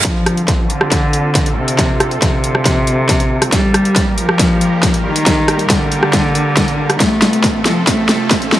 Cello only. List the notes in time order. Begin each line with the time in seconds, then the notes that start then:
0.05 F3
0.70 D3
1.57 C3
2.22 C3
3.52 G3
4.18 F3
5.05 D#3
5.70 D3
7.00 A3
7.65 F3
7.87 A3
8.52 F3